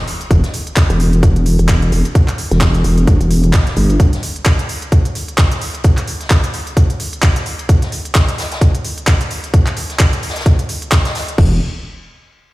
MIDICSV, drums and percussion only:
0, 0, Header, 1, 2, 480
1, 0, Start_track
1, 0, Key_signature, 1, "minor"
1, 0, Tempo, 461538
1, 318, Time_signature, 4, 2, 24, 8
1, 13036, End_track
2, 0, Start_track
2, 0, Title_t, "Drums"
2, 79, Note_on_c, 9, 46, 93
2, 82, Note_on_c, 9, 42, 66
2, 183, Note_off_c, 9, 46, 0
2, 186, Note_off_c, 9, 42, 0
2, 215, Note_on_c, 9, 42, 44
2, 216, Note_off_c, 9, 42, 0
2, 216, Note_on_c, 9, 42, 36
2, 319, Note_off_c, 9, 42, 0
2, 319, Note_on_c, 9, 36, 120
2, 319, Note_on_c, 9, 42, 77
2, 323, Note_off_c, 9, 42, 0
2, 323, Note_on_c, 9, 42, 80
2, 423, Note_off_c, 9, 36, 0
2, 427, Note_off_c, 9, 42, 0
2, 449, Note_on_c, 9, 38, 48
2, 456, Note_on_c, 9, 42, 51
2, 553, Note_off_c, 9, 38, 0
2, 559, Note_on_c, 9, 46, 110
2, 560, Note_off_c, 9, 42, 0
2, 560, Note_on_c, 9, 42, 66
2, 663, Note_off_c, 9, 46, 0
2, 664, Note_off_c, 9, 42, 0
2, 696, Note_on_c, 9, 42, 35
2, 794, Note_on_c, 9, 39, 121
2, 797, Note_off_c, 9, 42, 0
2, 797, Note_on_c, 9, 42, 86
2, 799, Note_off_c, 9, 42, 0
2, 799, Note_on_c, 9, 36, 117
2, 799, Note_on_c, 9, 42, 73
2, 800, Note_on_c, 9, 38, 105
2, 898, Note_off_c, 9, 39, 0
2, 903, Note_off_c, 9, 36, 0
2, 903, Note_off_c, 9, 42, 0
2, 904, Note_off_c, 9, 38, 0
2, 933, Note_on_c, 9, 42, 42
2, 936, Note_off_c, 9, 42, 0
2, 936, Note_on_c, 9, 42, 50
2, 1039, Note_on_c, 9, 46, 97
2, 1040, Note_off_c, 9, 42, 0
2, 1048, Note_on_c, 9, 42, 64
2, 1143, Note_off_c, 9, 46, 0
2, 1152, Note_off_c, 9, 42, 0
2, 1176, Note_on_c, 9, 42, 35
2, 1278, Note_off_c, 9, 42, 0
2, 1278, Note_on_c, 9, 36, 121
2, 1278, Note_on_c, 9, 42, 76
2, 1283, Note_off_c, 9, 42, 0
2, 1283, Note_on_c, 9, 42, 78
2, 1382, Note_off_c, 9, 36, 0
2, 1387, Note_off_c, 9, 42, 0
2, 1416, Note_on_c, 9, 42, 48
2, 1513, Note_off_c, 9, 42, 0
2, 1513, Note_on_c, 9, 42, 62
2, 1519, Note_on_c, 9, 46, 109
2, 1617, Note_off_c, 9, 42, 0
2, 1623, Note_off_c, 9, 46, 0
2, 1656, Note_on_c, 9, 42, 33
2, 1754, Note_on_c, 9, 39, 119
2, 1758, Note_off_c, 9, 42, 0
2, 1758, Note_on_c, 9, 36, 118
2, 1758, Note_on_c, 9, 42, 80
2, 1759, Note_off_c, 9, 42, 0
2, 1759, Note_on_c, 9, 38, 101
2, 1759, Note_on_c, 9, 42, 76
2, 1858, Note_off_c, 9, 39, 0
2, 1862, Note_off_c, 9, 36, 0
2, 1863, Note_off_c, 9, 38, 0
2, 1863, Note_off_c, 9, 42, 0
2, 1895, Note_on_c, 9, 42, 49
2, 1999, Note_off_c, 9, 42, 0
2, 1999, Note_on_c, 9, 46, 94
2, 2000, Note_on_c, 9, 42, 69
2, 2103, Note_off_c, 9, 46, 0
2, 2104, Note_off_c, 9, 42, 0
2, 2128, Note_on_c, 9, 42, 41
2, 2135, Note_off_c, 9, 42, 0
2, 2135, Note_on_c, 9, 42, 34
2, 2238, Note_off_c, 9, 42, 0
2, 2238, Note_on_c, 9, 36, 124
2, 2238, Note_on_c, 9, 42, 76
2, 2342, Note_off_c, 9, 36, 0
2, 2342, Note_off_c, 9, 42, 0
2, 2370, Note_on_c, 9, 39, 36
2, 2375, Note_on_c, 9, 42, 51
2, 2474, Note_off_c, 9, 39, 0
2, 2477, Note_off_c, 9, 42, 0
2, 2477, Note_on_c, 9, 42, 68
2, 2478, Note_on_c, 9, 46, 105
2, 2581, Note_off_c, 9, 42, 0
2, 2582, Note_off_c, 9, 46, 0
2, 2615, Note_on_c, 9, 42, 35
2, 2621, Note_on_c, 9, 38, 33
2, 2712, Note_on_c, 9, 39, 116
2, 2714, Note_off_c, 9, 38, 0
2, 2714, Note_on_c, 9, 38, 122
2, 2718, Note_off_c, 9, 42, 0
2, 2718, Note_on_c, 9, 36, 120
2, 2718, Note_on_c, 9, 42, 76
2, 2720, Note_off_c, 9, 42, 0
2, 2720, Note_on_c, 9, 42, 84
2, 2816, Note_off_c, 9, 39, 0
2, 2818, Note_off_c, 9, 38, 0
2, 2822, Note_off_c, 9, 36, 0
2, 2824, Note_off_c, 9, 42, 0
2, 2854, Note_on_c, 9, 42, 48
2, 2955, Note_off_c, 9, 42, 0
2, 2955, Note_on_c, 9, 42, 66
2, 2957, Note_on_c, 9, 46, 96
2, 3059, Note_off_c, 9, 42, 0
2, 3061, Note_off_c, 9, 46, 0
2, 3095, Note_on_c, 9, 42, 35
2, 3096, Note_off_c, 9, 42, 0
2, 3096, Note_on_c, 9, 42, 37
2, 3198, Note_off_c, 9, 42, 0
2, 3198, Note_on_c, 9, 36, 116
2, 3198, Note_on_c, 9, 42, 79
2, 3302, Note_off_c, 9, 36, 0
2, 3302, Note_off_c, 9, 42, 0
2, 3332, Note_on_c, 9, 42, 40
2, 3335, Note_off_c, 9, 42, 0
2, 3335, Note_on_c, 9, 42, 48
2, 3436, Note_off_c, 9, 42, 0
2, 3436, Note_on_c, 9, 42, 73
2, 3438, Note_on_c, 9, 46, 108
2, 3540, Note_off_c, 9, 42, 0
2, 3542, Note_off_c, 9, 46, 0
2, 3575, Note_on_c, 9, 42, 34
2, 3673, Note_on_c, 9, 39, 112
2, 3675, Note_off_c, 9, 42, 0
2, 3675, Note_on_c, 9, 42, 85
2, 3676, Note_on_c, 9, 38, 118
2, 3678, Note_off_c, 9, 42, 0
2, 3678, Note_on_c, 9, 36, 115
2, 3678, Note_on_c, 9, 42, 76
2, 3777, Note_off_c, 9, 39, 0
2, 3780, Note_off_c, 9, 38, 0
2, 3782, Note_off_c, 9, 36, 0
2, 3782, Note_off_c, 9, 42, 0
2, 3815, Note_on_c, 9, 42, 49
2, 3818, Note_on_c, 9, 38, 45
2, 3913, Note_off_c, 9, 42, 0
2, 3913, Note_on_c, 9, 42, 62
2, 3918, Note_on_c, 9, 46, 93
2, 3922, Note_off_c, 9, 38, 0
2, 4017, Note_off_c, 9, 42, 0
2, 4022, Note_off_c, 9, 46, 0
2, 4055, Note_on_c, 9, 42, 34
2, 4057, Note_off_c, 9, 42, 0
2, 4057, Note_on_c, 9, 42, 44
2, 4157, Note_on_c, 9, 36, 118
2, 4158, Note_off_c, 9, 42, 0
2, 4158, Note_on_c, 9, 42, 74
2, 4163, Note_off_c, 9, 42, 0
2, 4163, Note_on_c, 9, 42, 92
2, 4261, Note_off_c, 9, 36, 0
2, 4267, Note_off_c, 9, 42, 0
2, 4295, Note_on_c, 9, 42, 51
2, 4299, Note_on_c, 9, 38, 42
2, 4395, Note_off_c, 9, 42, 0
2, 4395, Note_on_c, 9, 42, 74
2, 4398, Note_on_c, 9, 46, 106
2, 4403, Note_off_c, 9, 38, 0
2, 4499, Note_off_c, 9, 42, 0
2, 4502, Note_off_c, 9, 46, 0
2, 4535, Note_on_c, 9, 42, 34
2, 4629, Note_off_c, 9, 42, 0
2, 4629, Note_on_c, 9, 42, 79
2, 4633, Note_on_c, 9, 39, 112
2, 4638, Note_off_c, 9, 42, 0
2, 4638, Note_on_c, 9, 36, 118
2, 4638, Note_on_c, 9, 42, 76
2, 4641, Note_on_c, 9, 38, 115
2, 4737, Note_off_c, 9, 39, 0
2, 4742, Note_off_c, 9, 36, 0
2, 4742, Note_off_c, 9, 42, 0
2, 4745, Note_off_c, 9, 38, 0
2, 4775, Note_on_c, 9, 42, 49
2, 4776, Note_off_c, 9, 42, 0
2, 4776, Note_on_c, 9, 42, 42
2, 4877, Note_off_c, 9, 42, 0
2, 4877, Note_on_c, 9, 42, 66
2, 4878, Note_on_c, 9, 46, 91
2, 4981, Note_off_c, 9, 42, 0
2, 4982, Note_off_c, 9, 46, 0
2, 5015, Note_on_c, 9, 42, 34
2, 5113, Note_off_c, 9, 42, 0
2, 5113, Note_on_c, 9, 42, 80
2, 5118, Note_on_c, 9, 36, 117
2, 5119, Note_off_c, 9, 42, 0
2, 5119, Note_on_c, 9, 42, 73
2, 5222, Note_off_c, 9, 36, 0
2, 5223, Note_off_c, 9, 42, 0
2, 5256, Note_on_c, 9, 42, 49
2, 5359, Note_on_c, 9, 46, 102
2, 5360, Note_off_c, 9, 42, 0
2, 5363, Note_on_c, 9, 42, 70
2, 5463, Note_off_c, 9, 46, 0
2, 5467, Note_off_c, 9, 42, 0
2, 5496, Note_on_c, 9, 42, 34
2, 5594, Note_on_c, 9, 38, 108
2, 5594, Note_on_c, 9, 39, 113
2, 5596, Note_off_c, 9, 42, 0
2, 5596, Note_on_c, 9, 42, 80
2, 5598, Note_on_c, 9, 36, 110
2, 5599, Note_off_c, 9, 42, 0
2, 5599, Note_on_c, 9, 42, 75
2, 5698, Note_off_c, 9, 38, 0
2, 5698, Note_off_c, 9, 39, 0
2, 5702, Note_off_c, 9, 36, 0
2, 5703, Note_off_c, 9, 42, 0
2, 5735, Note_on_c, 9, 42, 49
2, 5837, Note_off_c, 9, 42, 0
2, 5837, Note_on_c, 9, 42, 75
2, 5839, Note_on_c, 9, 46, 89
2, 5941, Note_off_c, 9, 42, 0
2, 5943, Note_off_c, 9, 46, 0
2, 5970, Note_on_c, 9, 42, 38
2, 5975, Note_off_c, 9, 42, 0
2, 5975, Note_on_c, 9, 42, 34
2, 6070, Note_off_c, 9, 42, 0
2, 6070, Note_on_c, 9, 42, 89
2, 6078, Note_on_c, 9, 36, 113
2, 6079, Note_off_c, 9, 42, 0
2, 6079, Note_on_c, 9, 42, 76
2, 6182, Note_off_c, 9, 36, 0
2, 6183, Note_off_c, 9, 42, 0
2, 6210, Note_on_c, 9, 39, 36
2, 6216, Note_on_c, 9, 42, 52
2, 6314, Note_off_c, 9, 39, 0
2, 6318, Note_on_c, 9, 46, 101
2, 6320, Note_off_c, 9, 42, 0
2, 6330, Note_on_c, 9, 42, 64
2, 6422, Note_off_c, 9, 46, 0
2, 6434, Note_off_c, 9, 42, 0
2, 6454, Note_on_c, 9, 38, 33
2, 6455, Note_on_c, 9, 42, 37
2, 6553, Note_on_c, 9, 39, 109
2, 6555, Note_off_c, 9, 38, 0
2, 6555, Note_on_c, 9, 38, 116
2, 6556, Note_off_c, 9, 42, 0
2, 6556, Note_on_c, 9, 42, 90
2, 6558, Note_off_c, 9, 42, 0
2, 6558, Note_on_c, 9, 36, 111
2, 6558, Note_on_c, 9, 42, 77
2, 6657, Note_off_c, 9, 39, 0
2, 6659, Note_off_c, 9, 38, 0
2, 6662, Note_off_c, 9, 36, 0
2, 6662, Note_off_c, 9, 42, 0
2, 6695, Note_on_c, 9, 42, 51
2, 6794, Note_off_c, 9, 42, 0
2, 6794, Note_on_c, 9, 42, 64
2, 6798, Note_on_c, 9, 46, 88
2, 6898, Note_off_c, 9, 42, 0
2, 6902, Note_off_c, 9, 46, 0
2, 6936, Note_on_c, 9, 42, 35
2, 6939, Note_off_c, 9, 42, 0
2, 6939, Note_on_c, 9, 42, 45
2, 7038, Note_on_c, 9, 36, 110
2, 7039, Note_off_c, 9, 42, 0
2, 7039, Note_on_c, 9, 42, 73
2, 7040, Note_off_c, 9, 42, 0
2, 7040, Note_on_c, 9, 42, 92
2, 7142, Note_off_c, 9, 36, 0
2, 7144, Note_off_c, 9, 42, 0
2, 7176, Note_on_c, 9, 42, 50
2, 7177, Note_off_c, 9, 42, 0
2, 7177, Note_on_c, 9, 42, 39
2, 7276, Note_off_c, 9, 42, 0
2, 7276, Note_on_c, 9, 42, 70
2, 7278, Note_on_c, 9, 46, 100
2, 7380, Note_off_c, 9, 42, 0
2, 7382, Note_off_c, 9, 46, 0
2, 7416, Note_on_c, 9, 42, 36
2, 7513, Note_on_c, 9, 39, 108
2, 7516, Note_on_c, 9, 38, 103
2, 7517, Note_off_c, 9, 42, 0
2, 7517, Note_on_c, 9, 42, 77
2, 7518, Note_off_c, 9, 42, 0
2, 7518, Note_on_c, 9, 36, 109
2, 7518, Note_on_c, 9, 42, 76
2, 7617, Note_off_c, 9, 39, 0
2, 7620, Note_off_c, 9, 38, 0
2, 7622, Note_off_c, 9, 36, 0
2, 7622, Note_off_c, 9, 42, 0
2, 7650, Note_on_c, 9, 38, 40
2, 7655, Note_on_c, 9, 42, 52
2, 7754, Note_off_c, 9, 38, 0
2, 7757, Note_off_c, 9, 42, 0
2, 7757, Note_on_c, 9, 42, 62
2, 7759, Note_on_c, 9, 46, 89
2, 7861, Note_off_c, 9, 42, 0
2, 7863, Note_off_c, 9, 46, 0
2, 7892, Note_on_c, 9, 42, 40
2, 7895, Note_off_c, 9, 42, 0
2, 7895, Note_on_c, 9, 42, 35
2, 7995, Note_off_c, 9, 42, 0
2, 7995, Note_on_c, 9, 42, 91
2, 7999, Note_off_c, 9, 42, 0
2, 7999, Note_on_c, 9, 36, 110
2, 7999, Note_on_c, 9, 42, 79
2, 8103, Note_off_c, 9, 36, 0
2, 8103, Note_off_c, 9, 42, 0
2, 8135, Note_on_c, 9, 38, 45
2, 8136, Note_on_c, 9, 42, 56
2, 8239, Note_off_c, 9, 38, 0
2, 8239, Note_on_c, 9, 46, 98
2, 8240, Note_off_c, 9, 42, 0
2, 8247, Note_on_c, 9, 42, 67
2, 8343, Note_off_c, 9, 46, 0
2, 8351, Note_off_c, 9, 42, 0
2, 8376, Note_on_c, 9, 42, 37
2, 8474, Note_on_c, 9, 39, 115
2, 8476, Note_off_c, 9, 42, 0
2, 8476, Note_on_c, 9, 42, 83
2, 8479, Note_off_c, 9, 42, 0
2, 8479, Note_on_c, 9, 36, 115
2, 8479, Note_on_c, 9, 42, 82
2, 8480, Note_on_c, 9, 38, 119
2, 8578, Note_off_c, 9, 39, 0
2, 8583, Note_off_c, 9, 36, 0
2, 8583, Note_off_c, 9, 42, 0
2, 8584, Note_off_c, 9, 38, 0
2, 8615, Note_on_c, 9, 42, 44
2, 8616, Note_off_c, 9, 42, 0
2, 8616, Note_on_c, 9, 42, 54
2, 8718, Note_on_c, 9, 38, 97
2, 8719, Note_on_c, 9, 46, 85
2, 8720, Note_off_c, 9, 42, 0
2, 8720, Note_on_c, 9, 42, 75
2, 8822, Note_off_c, 9, 38, 0
2, 8823, Note_off_c, 9, 46, 0
2, 8824, Note_off_c, 9, 42, 0
2, 8854, Note_on_c, 9, 42, 73
2, 8856, Note_off_c, 9, 42, 0
2, 8856, Note_on_c, 9, 42, 37
2, 8861, Note_on_c, 9, 38, 102
2, 8957, Note_off_c, 9, 42, 0
2, 8957, Note_on_c, 9, 42, 85
2, 8958, Note_on_c, 9, 36, 103
2, 8959, Note_off_c, 9, 42, 0
2, 8959, Note_on_c, 9, 42, 79
2, 8965, Note_off_c, 9, 38, 0
2, 9062, Note_off_c, 9, 36, 0
2, 9063, Note_off_c, 9, 42, 0
2, 9096, Note_on_c, 9, 42, 54
2, 9199, Note_on_c, 9, 46, 97
2, 9200, Note_off_c, 9, 42, 0
2, 9203, Note_on_c, 9, 42, 66
2, 9303, Note_off_c, 9, 46, 0
2, 9307, Note_off_c, 9, 42, 0
2, 9336, Note_on_c, 9, 42, 37
2, 9434, Note_on_c, 9, 39, 115
2, 9437, Note_off_c, 9, 42, 0
2, 9437, Note_on_c, 9, 42, 92
2, 9438, Note_on_c, 9, 36, 109
2, 9439, Note_off_c, 9, 42, 0
2, 9439, Note_on_c, 9, 42, 77
2, 9443, Note_on_c, 9, 38, 112
2, 9538, Note_off_c, 9, 39, 0
2, 9542, Note_off_c, 9, 36, 0
2, 9543, Note_off_c, 9, 42, 0
2, 9547, Note_off_c, 9, 38, 0
2, 9575, Note_on_c, 9, 42, 54
2, 9679, Note_off_c, 9, 42, 0
2, 9679, Note_on_c, 9, 46, 87
2, 9680, Note_on_c, 9, 42, 61
2, 9783, Note_off_c, 9, 46, 0
2, 9784, Note_off_c, 9, 42, 0
2, 9815, Note_on_c, 9, 42, 38
2, 9830, Note_off_c, 9, 42, 0
2, 9830, Note_on_c, 9, 42, 44
2, 9915, Note_off_c, 9, 42, 0
2, 9915, Note_on_c, 9, 42, 88
2, 9918, Note_on_c, 9, 36, 118
2, 9919, Note_off_c, 9, 42, 0
2, 9919, Note_on_c, 9, 42, 84
2, 10022, Note_off_c, 9, 36, 0
2, 10023, Note_off_c, 9, 42, 0
2, 10051, Note_on_c, 9, 39, 37
2, 10056, Note_on_c, 9, 42, 55
2, 10154, Note_off_c, 9, 42, 0
2, 10154, Note_on_c, 9, 42, 74
2, 10155, Note_off_c, 9, 39, 0
2, 10159, Note_on_c, 9, 46, 103
2, 10258, Note_off_c, 9, 42, 0
2, 10263, Note_off_c, 9, 46, 0
2, 10295, Note_on_c, 9, 38, 40
2, 10295, Note_on_c, 9, 42, 37
2, 10393, Note_on_c, 9, 39, 122
2, 10398, Note_off_c, 9, 42, 0
2, 10398, Note_on_c, 9, 36, 111
2, 10398, Note_on_c, 9, 42, 81
2, 10399, Note_off_c, 9, 38, 0
2, 10401, Note_on_c, 9, 38, 115
2, 10497, Note_off_c, 9, 39, 0
2, 10502, Note_off_c, 9, 36, 0
2, 10502, Note_off_c, 9, 42, 0
2, 10505, Note_off_c, 9, 38, 0
2, 10535, Note_on_c, 9, 42, 54
2, 10637, Note_off_c, 9, 42, 0
2, 10637, Note_on_c, 9, 42, 67
2, 10638, Note_on_c, 9, 46, 87
2, 10701, Note_off_c, 9, 42, 0
2, 10701, Note_on_c, 9, 42, 66
2, 10706, Note_on_c, 9, 38, 86
2, 10742, Note_off_c, 9, 46, 0
2, 10769, Note_off_c, 9, 42, 0
2, 10769, Note_on_c, 9, 42, 62
2, 10775, Note_off_c, 9, 42, 0
2, 10775, Note_on_c, 9, 42, 37
2, 10776, Note_off_c, 9, 38, 0
2, 10776, Note_on_c, 9, 38, 92
2, 10820, Note_off_c, 9, 38, 0
2, 10820, Note_off_c, 9, 42, 0
2, 10820, Note_on_c, 9, 38, 93
2, 10820, Note_on_c, 9, 42, 66
2, 10878, Note_off_c, 9, 42, 0
2, 10878, Note_on_c, 9, 36, 106
2, 10878, Note_on_c, 9, 42, 86
2, 10924, Note_off_c, 9, 38, 0
2, 10982, Note_off_c, 9, 36, 0
2, 10982, Note_off_c, 9, 42, 0
2, 11011, Note_on_c, 9, 42, 45
2, 11015, Note_off_c, 9, 42, 0
2, 11015, Note_on_c, 9, 42, 54
2, 11118, Note_on_c, 9, 46, 99
2, 11119, Note_off_c, 9, 42, 0
2, 11123, Note_on_c, 9, 42, 65
2, 11222, Note_off_c, 9, 46, 0
2, 11227, Note_off_c, 9, 42, 0
2, 11254, Note_on_c, 9, 42, 37
2, 11353, Note_on_c, 9, 39, 118
2, 11358, Note_off_c, 9, 42, 0
2, 11358, Note_on_c, 9, 36, 106
2, 11358, Note_on_c, 9, 42, 84
2, 11359, Note_on_c, 9, 38, 93
2, 11457, Note_off_c, 9, 39, 0
2, 11462, Note_off_c, 9, 36, 0
2, 11462, Note_off_c, 9, 42, 0
2, 11463, Note_off_c, 9, 38, 0
2, 11492, Note_on_c, 9, 42, 79
2, 11494, Note_on_c, 9, 38, 109
2, 11495, Note_off_c, 9, 42, 0
2, 11495, Note_on_c, 9, 42, 53
2, 11598, Note_off_c, 9, 38, 0
2, 11598, Note_on_c, 9, 46, 87
2, 11599, Note_off_c, 9, 42, 0
2, 11600, Note_on_c, 9, 38, 109
2, 11601, Note_on_c, 9, 42, 76
2, 11702, Note_off_c, 9, 46, 0
2, 11704, Note_off_c, 9, 38, 0
2, 11705, Note_off_c, 9, 42, 0
2, 11735, Note_on_c, 9, 42, 37
2, 11737, Note_off_c, 9, 42, 0
2, 11737, Note_on_c, 9, 42, 40
2, 11838, Note_on_c, 9, 36, 115
2, 11838, Note_on_c, 9, 49, 85
2, 11841, Note_off_c, 9, 42, 0
2, 11942, Note_off_c, 9, 36, 0
2, 11942, Note_off_c, 9, 49, 0
2, 13036, End_track
0, 0, End_of_file